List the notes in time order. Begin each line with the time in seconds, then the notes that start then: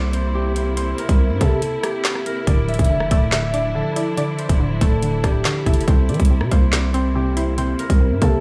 Already playing: C2 C3 A#3 E4 G4 A4 C5 D5
0.13 C5, closed hi-hat
0.35 G4
0.56 C5, closed hi-hat
0.77 C5, closed hi-hat
0.98 A#4, closed hi-hat
1.09 C2, kick, closed hi-hat
1.30 G2
1.41 C3 A4, kick, closed hi-hat
1.62 closed hi-hat
1.83 G4, cross-stick, closed hi-hat
2.05 snare, clap
2.15 cross-stick
2.26 A#4, closed hi-hat
2.47 D1 D3 F3 D4 D5, kick, closed hi-hat
2.68 E5, closed hi-hat
2.74 closed hi-hat
2.79 F1, kick, closed hi-hat
2.84 closed hi-hat
2.90 D3
3.00 cross-stick
3.11 D1 A3 D5, kick, closed hi-hat
3.32 D3 E5, snare, clap, closed hi-hat
3.54 D4 D5, closed hi-hat
3.75 D3 A4
3.96 E4 D5, closed hi-hat
4.17 D3 D5, closed hi-hat
4.39 C5, closed hi-hat
4.49 D1, kick, closed hi-hat
4.60 D3
4.81 D1 A3 A4, kick, closed hi-hat
5.03 D3, closed hi-hat
5.24 D1 D4 G4, kick, cross-stick, closed hi-hat
5.45 D3, snare, clap
5.66 F1 E4 A4, kick, closed hi-hat
5.74 closed hi-hat
5.81 closed hi-hat
5.88 C2 C3 A#3 C5, kick, closed hi-hat
6.09 E3 D5, closed hi-hat
6.14 closed hi-hat
6.20 C2, kick, closed hi-hat
6.25 closed hi-hat
6.30 C3
6.41 C3, cross-stick
6.51 C2 A#3 C5, kick, closed hi-hat
6.73 C3 D5, snare, clap, closed hi-hat
6.94 C4 C5, closed hi-hat
7.15 C3 G4
7.37 E4 C5, closed hi-hat
7.58 C3 C5, closed hi-hat
7.79 A#4, closed hi-hat
7.90 C2, kick, closed hi-hat
8.00 C3
8.11 G2
8.22 C3 A#3 A4, kick, closed hi-hat